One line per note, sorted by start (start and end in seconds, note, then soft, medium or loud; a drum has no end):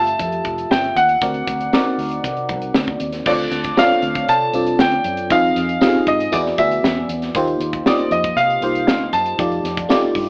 0.00 0.13 G1 medium
0.00 1.23 A3 medium
0.00 1.23 F4 medium
0.00 1.23 G4 medium
0.00 1.24 E5 medium
0.00 0.73 A5 loud
0.07 closed hi-hat medium
0.19 0.39 F2 medium
0.19 kick medium
0.19 closed hi-hat medium
0.32 closed hi-hat soft
0.44 0.65 F1 loud
0.44 kick medium
0.44 closed hi-hat medium
0.58 closed hi-hat soft
0.70 0.90 G1 medium
0.70 0.97 G5 medium
0.70 snare loud
0.84 closed hi-hat soft
0.95 1.16 D#2 medium
0.95 2.97 F#5 loud
0.95 closed hi-hat medium
1.09 closed hi-hat soft
1.21 1.42 D2 loud
1.21 1.68 C4 medium
1.21 1.68 F#4 medium
1.21 1.69 A#4 medium
1.21 1.69 D5 medium
1.21 kick loud
1.21 closed hi-hat medium
1.34 closed hi-hat soft
1.47 1.67 D2 medium
1.47 kick loud
1.47 closed hi-hat medium
1.61 closed hi-hat medium
1.73 2.66 C4 medium
1.73 1.79 D#4 medium
1.73 2.66 A#4 medium
1.73 2.67 D5 loud
1.73 snare loud
1.80 2.69 F#4 medium
1.98 2.18 D2 medium
1.98 open hi-hat medium
2.11 closed hi-hat medium
2.24 2.50 C3 medium
2.24 kick medium
2.24 closed hi-hat medium
2.37 closed hi-hat soft
2.49 2.69 C2 medium
2.49 kick loud
2.49 closed hi-hat medium
2.62 closed hi-hat medium
2.74 2.95 D2 medium
2.74 snare loud
2.88 kick medium
3.00 3.21 D#2 medium
3.00 closed hi-hat medium
3.12 snare soft
3.12 closed hi-hat soft
3.26 3.46 D2 loud
3.26 3.73 C4 medium
3.26 3.73 D4 medium
3.26 3.73 F4 medium
3.26 3.73 A4 medium
3.26 3.33 C#5 medium
3.26 3.79 D5 medium
3.26 kick loud
3.26 crash loud
3.34 3.76 D5 medium
3.51 3.72 D2 loud
3.51 snare soft
3.51 closed hi-hat medium
3.64 kick medium
3.64 closed hi-hat medium
3.77 4.47 C4 medium
3.77 4.47 D4 medium
3.77 4.47 F4 medium
3.77 4.47 A4 medium
3.77 3.84 C#5 medium
3.77 4.31 F5 medium
3.77 snare loud
3.84 4.50 D5 medium
4.02 4.23 D2 medium
4.02 closed hi-hat medium
4.15 kick medium
4.15 closed hi-hat medium
4.28 4.48 C3 medium
4.28 4.76 A5 loud
4.28 closed hi-hat medium
4.53 4.74 C2 medium
4.53 5.23 C4 medium
4.53 5.24 D4 medium
4.53 5.24 F4 medium
4.53 5.24 A4 medium
4.53 5.24 D5 medium
4.53 closed hi-hat medium
4.67 closed hi-hat medium
4.79 4.99 D2 medium
4.79 5.28 G5 medium
4.79 snare loud
4.91 closed hi-hat soft
5.04 5.30 F#2 loud
5.04 closed hi-hat medium
5.17 closed hi-hat medium
5.30 5.50 F2 loud
5.30 5.77 C4 medium
5.30 5.77 D#4 medium
5.30 5.77 F4 medium
5.30 5.77 G#4 medium
5.30 5.77 D#5 medium
5.30 6.10 F5 loud
5.30 kick loud
5.30 closed hi-hat medium
5.56 5.76 F2 medium
5.56 snare soft
5.56 closed hi-hat medium
5.69 closed hi-hat medium
5.81 6.32 C4 medium
5.81 6.32 D#4 medium
5.81 6.32 F4 medium
5.81 5.88 G4 medium
5.81 6.33 D#5 medium
5.81 snare loud
5.88 6.32 G#4 medium
6.07 6.27 G#2 medium
6.07 6.34 D#5 medium
6.07 kick medium
6.07 closed hi-hat medium
6.20 closed hi-hat medium
6.32 6.53 E2 loud
6.32 6.56 B3 medium
6.32 6.56 E4 medium
6.32 6.56 F#4 medium
6.32 6.56 G#4 medium
6.32 6.38 D5 medium
6.32 6.56 D5 medium
6.32 kick medium
6.32 closed hi-hat medium
6.46 snare soft
6.58 6.78 D2 loud
6.58 7.28 B3 medium
6.58 7.28 E4 medium
6.58 7.28 F#4 medium
6.58 7.28 G#4 medium
6.58 7.29 D5 medium
6.58 7.06 E5 medium
6.58 kick loud
6.58 closed hi-hat medium
6.71 closed hi-hat medium
6.83 7.03 E2 medium
6.83 snare loud
7.09 7.29 E2 loud
7.09 closed hi-hat medium
7.22 snare soft
7.22 closed hi-hat soft
7.34 7.55 D#2 loud
7.34 7.81 A#3 medium
7.34 7.82 D#4 medium
7.34 7.82 F4 medium
7.34 7.82 G4 medium
7.34 7.82 C5 medium
7.34 kick loud
7.34 closed hi-hat medium
7.47 closed hi-hat soft
7.60 7.80 D#2 loud
7.60 closed hi-hat medium
7.73 kick medium
7.73 closed hi-hat medium
7.86 8.56 A#3 medium
7.86 8.56 D#4 medium
7.86 8.56 F4 medium
7.86 8.56 G4 medium
7.86 8.10 D5 medium
7.86 8.56 D#5 medium
7.86 snare loud
7.99 closed hi-hat soft
8.11 8.31 F2 medium
8.11 8.38 D#5 medium
8.11 closed hi-hat medium
8.24 kick medium
8.24 closed hi-hat medium
8.36 8.56 C3 loud
8.36 9.15 F5 medium
8.36 closed hi-hat medium
8.50 closed hi-hat soft
8.61 8.87 C2 medium
8.61 9.32 A#3 medium
8.61 9.32 D#4 medium
8.61 9.32 F4 medium
8.61 9.32 G4 medium
8.61 9.32 C5 medium
8.61 closed hi-hat medium
8.75 closed hi-hat medium
8.87 9.07 D2 medium
8.87 snare loud
9.12 9.33 F#2 medium
9.12 10.11 A5 loud
9.12 closed hi-hat medium
9.26 closed hi-hat soft
9.38 9.59 F2 loud
9.38 9.85 A3 medium
9.38 9.85 D#4 medium
9.38 9.85 F4 medium
9.38 9.85 G4 medium
9.38 9.86 D5 medium
9.38 kick loud
9.38 closed hi-hat medium
9.52 closed hi-hat soft
9.64 9.84 F2 loud
9.64 snare soft
9.64 closed hi-hat medium
9.77 kick medium
9.77 closed hi-hat medium
9.89 10.29 A3 medium
9.89 10.29 D#4 medium
9.89 10.29 F4 medium
9.89 10.29 G4 medium
9.89 10.29 D5 loud
9.89 snare loud
10.15 10.29 G2 medium
10.15 kick medium
10.15 open hi-hat medium